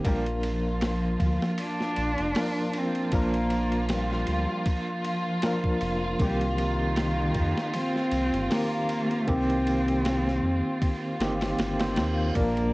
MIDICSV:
0, 0, Header, 1, 8, 480
1, 0, Start_track
1, 0, Key_signature, -3, "minor"
1, 0, Tempo, 769231
1, 34, Time_signature, 4, 2, 24, 8
1, 7945, End_track
2, 0, Start_track
2, 0, Title_t, "Violin section"
2, 0, Program_c, 0, 48
2, 33, Note_on_c, 0, 65, 75
2, 35, Note_off_c, 0, 65, 0
2, 35, Note_on_c, 0, 65, 75
2, 7718, Note_on_c, 0, 74, 82
2, 7725, Note_off_c, 0, 65, 0
2, 7945, Note_off_c, 0, 74, 0
2, 7945, End_track
3, 0, Start_track
3, 0, Title_t, "Tine electric piano"
3, 0, Program_c, 1, 4
3, 0, Control_c, 1, 64, 127
3, 25, Note_on_c, 1, 53, 85
3, 31, Note_on_c, 1, 58, 73
3, 37, Note_on_c, 1, 62, 76
3, 40, Note_on_c, 1, 70, 90
3, 42, Control_c, 1, 64, 0
3, 156, Control_c, 1, 64, 127
3, 1443, Note_off_c, 1, 53, 0
3, 1447, Note_off_c, 1, 58, 0
3, 1449, Note_off_c, 1, 62, 0
3, 1451, Note_off_c, 1, 70, 0
3, 1474, Note_on_c, 1, 53, 77
3, 1477, Note_on_c, 1, 58, 72
3, 1477, Note_on_c, 1, 62, 71
3, 1480, Note_on_c, 1, 70, 88
3, 1928, Note_off_c, 1, 53, 0
3, 1929, Note_off_c, 1, 58, 0
3, 1930, Note_off_c, 1, 62, 0
3, 1931, Note_off_c, 1, 70, 0
3, 1951, Note_on_c, 1, 53, 91
3, 1958, Note_on_c, 1, 58, 77
3, 1962, Note_on_c, 1, 62, 78
3, 1966, Note_on_c, 1, 70, 93
3, 3367, Note_off_c, 1, 53, 0
3, 3370, Note_off_c, 1, 58, 0
3, 3372, Note_off_c, 1, 62, 0
3, 3374, Note_off_c, 1, 70, 0
3, 3387, Note_on_c, 1, 53, 81
3, 3392, Note_on_c, 1, 58, 73
3, 3394, Note_on_c, 1, 62, 70
3, 3397, Note_on_c, 1, 70, 88
3, 3845, Note_off_c, 1, 53, 0
3, 3847, Note_off_c, 1, 58, 0
3, 3848, Note_off_c, 1, 62, 0
3, 3850, Note_off_c, 1, 70, 0
3, 3864, Note_on_c, 1, 51, 81
3, 3868, Note_on_c, 1, 58, 85
3, 3871, Note_on_c, 1, 60, 79
3, 3879, Note_on_c, 1, 67, 95
3, 3881, Control_c, 1, 64, 0
3, 4004, Control_c, 1, 64, 127
3, 5283, Note_off_c, 1, 51, 0
3, 5285, Note_off_c, 1, 58, 0
3, 5287, Note_off_c, 1, 60, 0
3, 5290, Note_off_c, 1, 67, 0
3, 5305, Note_on_c, 1, 58, 78
3, 5306, Note_on_c, 1, 51, 80
3, 5308, Note_on_c, 1, 60, 76
3, 5309, Note_on_c, 1, 67, 94
3, 5764, Note_off_c, 1, 51, 0
3, 5764, Note_off_c, 1, 58, 0
3, 5765, Note_off_c, 1, 60, 0
3, 5765, Note_off_c, 1, 67, 0
3, 5783, Note_on_c, 1, 51, 86
3, 5790, Note_on_c, 1, 58, 82
3, 5793, Note_on_c, 1, 60, 74
3, 5796, Note_on_c, 1, 67, 102
3, 6967, Note_off_c, 1, 51, 0
3, 6970, Note_off_c, 1, 58, 0
3, 6972, Note_off_c, 1, 60, 0
3, 6973, Note_off_c, 1, 67, 0
3, 6992, Note_on_c, 1, 51, 102
3, 6996, Note_on_c, 1, 58, 88
3, 6998, Note_on_c, 1, 60, 82
3, 6999, Note_on_c, 1, 67, 105
3, 7334, Note_off_c, 1, 51, 0
3, 7336, Note_off_c, 1, 58, 0
3, 7337, Note_off_c, 1, 60, 0
3, 7338, Note_off_c, 1, 67, 0
3, 7357, Note_on_c, 1, 51, 89
3, 7363, Note_on_c, 1, 58, 81
3, 7365, Note_on_c, 1, 60, 81
3, 7367, Note_on_c, 1, 72, 100
3, 7683, Note_off_c, 1, 51, 0
3, 7686, Note_off_c, 1, 58, 0
3, 7687, Note_off_c, 1, 60, 0
3, 7688, Note_off_c, 1, 72, 0
3, 7702, Note_on_c, 1, 53, 87
3, 7707, Note_on_c, 1, 58, 86
3, 7712, Note_on_c, 1, 62, 82
3, 7716, Note_on_c, 1, 70, 91
3, 7722, Control_c, 1, 64, 0
3, 7823, Control_c, 1, 64, 127
3, 7945, Note_off_c, 1, 53, 0
3, 7945, Note_off_c, 1, 58, 0
3, 7945, Note_off_c, 1, 62, 0
3, 7945, Note_off_c, 1, 70, 0
3, 7945, End_track
4, 0, Start_track
4, 0, Title_t, "Cello"
4, 0, Program_c, 2, 42
4, 38, Note_on_c, 2, 55, 97
4, 145, Note_off_c, 2, 55, 0
4, 286, Note_on_c, 2, 53, 96
4, 975, Note_off_c, 2, 53, 0
4, 1006, Note_on_c, 2, 62, 111
4, 1732, Note_on_c, 2, 60, 94
4, 1741, Note_off_c, 2, 62, 0
4, 1968, Note_on_c, 2, 58, 94
4, 1977, Note_off_c, 2, 60, 0
4, 2440, Note_off_c, 2, 58, 0
4, 2445, Note_on_c, 2, 55, 83
4, 2927, Note_on_c, 2, 53, 84
4, 2937, Note_off_c, 2, 55, 0
4, 3640, Note_off_c, 2, 53, 0
4, 3892, Note_on_c, 2, 55, 103
4, 4070, Note_off_c, 2, 55, 0
4, 4081, Note_on_c, 2, 53, 68
4, 4114, Note_on_c, 2, 51, 102
4, 4123, Note_off_c, 2, 53, 0
4, 4835, Note_on_c, 2, 60, 121
4, 4845, Note_off_c, 2, 51, 0
4, 5316, Note_on_c, 2, 58, 107
4, 5325, Note_off_c, 2, 60, 0
4, 5792, Note_on_c, 2, 60, 104
4, 5802, Note_off_c, 2, 58, 0
4, 7233, Note_off_c, 2, 60, 0
4, 7723, Note_on_c, 2, 58, 96
4, 7945, Note_off_c, 2, 58, 0
4, 7945, End_track
5, 0, Start_track
5, 0, Title_t, "Analog synth bass"
5, 0, Program_c, 3, 38
5, 30, Note_on_c, 3, 34, 100
5, 731, Note_off_c, 3, 34, 0
5, 750, Note_on_c, 3, 38, 89
5, 869, Note_off_c, 3, 38, 0
5, 1232, Note_on_c, 3, 34, 89
5, 1350, Note_off_c, 3, 34, 0
5, 1369, Note_on_c, 3, 29, 91
5, 1462, Note_off_c, 3, 29, 0
5, 1948, Note_on_c, 3, 34, 101
5, 2650, Note_off_c, 3, 34, 0
5, 2670, Note_on_c, 3, 38, 92
5, 2789, Note_off_c, 3, 38, 0
5, 3629, Note_on_c, 3, 29, 88
5, 3846, Note_off_c, 3, 29, 0
5, 3866, Note_on_c, 3, 36, 103
5, 4569, Note_off_c, 3, 36, 0
5, 4586, Note_on_c, 3, 41, 94
5, 4707, Note_off_c, 3, 41, 0
5, 5067, Note_on_c, 3, 36, 93
5, 5187, Note_off_c, 3, 36, 0
5, 5201, Note_on_c, 3, 31, 92
5, 5298, Note_off_c, 3, 31, 0
5, 5790, Note_on_c, 3, 36, 99
5, 6491, Note_off_c, 3, 36, 0
5, 6508, Note_on_c, 3, 41, 91
5, 6628, Note_off_c, 3, 41, 0
5, 6987, Note_on_c, 3, 31, 90
5, 7205, Note_off_c, 3, 31, 0
5, 7225, Note_on_c, 3, 31, 88
5, 7468, Note_on_c, 3, 39, 89
5, 7478, Note_off_c, 3, 31, 0
5, 7685, Note_off_c, 3, 39, 0
5, 7710, Note_on_c, 3, 34, 95
5, 7945, Note_off_c, 3, 34, 0
5, 7945, End_track
6, 0, Start_track
6, 0, Title_t, "Impact"
6, 0, Program_c, 4, 103
6, 7710, Note_on_c, 4, 60, 72
6, 7945, Note_off_c, 4, 60, 0
6, 7945, End_track
7, 0, Start_track
7, 0, Title_t, "Reverse cymbal"
7, 0, Program_c, 5, 119
7, 6750, Note_on_c, 5, 60, 71
7, 7712, Note_off_c, 5, 60, 0
7, 7945, End_track
8, 0, Start_track
8, 0, Title_t, "Drums"
8, 30, Note_on_c, 9, 36, 105
8, 31, Note_on_c, 9, 51, 88
8, 92, Note_off_c, 9, 36, 0
8, 94, Note_off_c, 9, 51, 0
8, 165, Note_on_c, 9, 51, 40
8, 227, Note_off_c, 9, 51, 0
8, 270, Note_on_c, 9, 51, 63
8, 332, Note_off_c, 9, 51, 0
8, 507, Note_on_c, 9, 51, 77
8, 514, Note_on_c, 9, 38, 96
8, 569, Note_off_c, 9, 51, 0
8, 576, Note_off_c, 9, 38, 0
8, 748, Note_on_c, 9, 36, 88
8, 750, Note_on_c, 9, 51, 63
8, 811, Note_off_c, 9, 36, 0
8, 812, Note_off_c, 9, 51, 0
8, 889, Note_on_c, 9, 38, 49
8, 951, Note_off_c, 9, 38, 0
8, 985, Note_on_c, 9, 51, 86
8, 1048, Note_off_c, 9, 51, 0
8, 1127, Note_on_c, 9, 38, 38
8, 1189, Note_off_c, 9, 38, 0
8, 1225, Note_on_c, 9, 51, 60
8, 1287, Note_off_c, 9, 51, 0
8, 1360, Note_on_c, 9, 51, 41
8, 1423, Note_off_c, 9, 51, 0
8, 1466, Note_on_c, 9, 46, 76
8, 1473, Note_on_c, 9, 38, 111
8, 1528, Note_off_c, 9, 46, 0
8, 1535, Note_off_c, 9, 38, 0
8, 1706, Note_on_c, 9, 51, 64
8, 1769, Note_off_c, 9, 51, 0
8, 1841, Note_on_c, 9, 51, 41
8, 1903, Note_off_c, 9, 51, 0
8, 1945, Note_on_c, 9, 51, 86
8, 1948, Note_on_c, 9, 36, 107
8, 2007, Note_off_c, 9, 51, 0
8, 2010, Note_off_c, 9, 36, 0
8, 2083, Note_on_c, 9, 51, 42
8, 2145, Note_off_c, 9, 51, 0
8, 2185, Note_on_c, 9, 51, 62
8, 2247, Note_off_c, 9, 51, 0
8, 2320, Note_on_c, 9, 51, 40
8, 2383, Note_off_c, 9, 51, 0
8, 2426, Note_on_c, 9, 51, 78
8, 2433, Note_on_c, 9, 38, 105
8, 2488, Note_off_c, 9, 51, 0
8, 2495, Note_off_c, 9, 38, 0
8, 2567, Note_on_c, 9, 38, 32
8, 2629, Note_off_c, 9, 38, 0
8, 2663, Note_on_c, 9, 51, 61
8, 2726, Note_off_c, 9, 51, 0
8, 2906, Note_on_c, 9, 51, 82
8, 2907, Note_on_c, 9, 36, 104
8, 2968, Note_off_c, 9, 51, 0
8, 2969, Note_off_c, 9, 36, 0
8, 3149, Note_on_c, 9, 51, 59
8, 3211, Note_off_c, 9, 51, 0
8, 3383, Note_on_c, 9, 51, 84
8, 3390, Note_on_c, 9, 38, 113
8, 3446, Note_off_c, 9, 51, 0
8, 3452, Note_off_c, 9, 38, 0
8, 3519, Note_on_c, 9, 36, 87
8, 3582, Note_off_c, 9, 36, 0
8, 3625, Note_on_c, 9, 51, 64
8, 3687, Note_off_c, 9, 51, 0
8, 3866, Note_on_c, 9, 36, 106
8, 3866, Note_on_c, 9, 51, 80
8, 3928, Note_off_c, 9, 36, 0
8, 3929, Note_off_c, 9, 51, 0
8, 4001, Note_on_c, 9, 51, 40
8, 4063, Note_off_c, 9, 51, 0
8, 4108, Note_on_c, 9, 51, 58
8, 4171, Note_off_c, 9, 51, 0
8, 4345, Note_on_c, 9, 51, 77
8, 4352, Note_on_c, 9, 38, 99
8, 4408, Note_off_c, 9, 51, 0
8, 4415, Note_off_c, 9, 38, 0
8, 4583, Note_on_c, 9, 51, 64
8, 4586, Note_on_c, 9, 36, 85
8, 4646, Note_off_c, 9, 51, 0
8, 4648, Note_off_c, 9, 36, 0
8, 4728, Note_on_c, 9, 38, 52
8, 4790, Note_off_c, 9, 38, 0
8, 4828, Note_on_c, 9, 51, 82
8, 4890, Note_off_c, 9, 51, 0
8, 4967, Note_on_c, 9, 38, 38
8, 5029, Note_off_c, 9, 38, 0
8, 5064, Note_on_c, 9, 51, 66
8, 5127, Note_off_c, 9, 51, 0
8, 5203, Note_on_c, 9, 51, 43
8, 5265, Note_off_c, 9, 51, 0
8, 5308, Note_on_c, 9, 46, 80
8, 5315, Note_on_c, 9, 38, 108
8, 5371, Note_off_c, 9, 46, 0
8, 5378, Note_off_c, 9, 38, 0
8, 5547, Note_on_c, 9, 51, 67
8, 5610, Note_off_c, 9, 51, 0
8, 5683, Note_on_c, 9, 51, 40
8, 5746, Note_off_c, 9, 51, 0
8, 5788, Note_on_c, 9, 51, 84
8, 5789, Note_on_c, 9, 36, 110
8, 5851, Note_off_c, 9, 36, 0
8, 5851, Note_off_c, 9, 51, 0
8, 5926, Note_on_c, 9, 51, 40
8, 5989, Note_off_c, 9, 51, 0
8, 6033, Note_on_c, 9, 51, 64
8, 6095, Note_off_c, 9, 51, 0
8, 6166, Note_on_c, 9, 51, 41
8, 6228, Note_off_c, 9, 51, 0
8, 6270, Note_on_c, 9, 51, 78
8, 6277, Note_on_c, 9, 38, 101
8, 6333, Note_off_c, 9, 51, 0
8, 6339, Note_off_c, 9, 38, 0
8, 6411, Note_on_c, 9, 38, 36
8, 6473, Note_off_c, 9, 38, 0
8, 6750, Note_on_c, 9, 36, 110
8, 6750, Note_on_c, 9, 51, 83
8, 6813, Note_off_c, 9, 36, 0
8, 6813, Note_off_c, 9, 51, 0
8, 6991, Note_on_c, 9, 51, 73
8, 6998, Note_on_c, 9, 38, 96
8, 7053, Note_off_c, 9, 51, 0
8, 7060, Note_off_c, 9, 38, 0
8, 7120, Note_on_c, 9, 51, 73
8, 7127, Note_on_c, 9, 38, 101
8, 7183, Note_off_c, 9, 51, 0
8, 7190, Note_off_c, 9, 38, 0
8, 7229, Note_on_c, 9, 51, 76
8, 7236, Note_on_c, 9, 38, 104
8, 7292, Note_off_c, 9, 51, 0
8, 7299, Note_off_c, 9, 38, 0
8, 7360, Note_on_c, 9, 51, 74
8, 7367, Note_on_c, 9, 38, 99
8, 7423, Note_off_c, 9, 51, 0
8, 7430, Note_off_c, 9, 38, 0
8, 7465, Note_on_c, 9, 51, 75
8, 7472, Note_on_c, 9, 38, 101
8, 7527, Note_off_c, 9, 51, 0
8, 7534, Note_off_c, 9, 38, 0
8, 7708, Note_on_c, 9, 51, 92
8, 7709, Note_on_c, 9, 36, 110
8, 7770, Note_off_c, 9, 51, 0
8, 7771, Note_off_c, 9, 36, 0
8, 7844, Note_on_c, 9, 51, 39
8, 7906, Note_off_c, 9, 51, 0
8, 7945, End_track
0, 0, End_of_file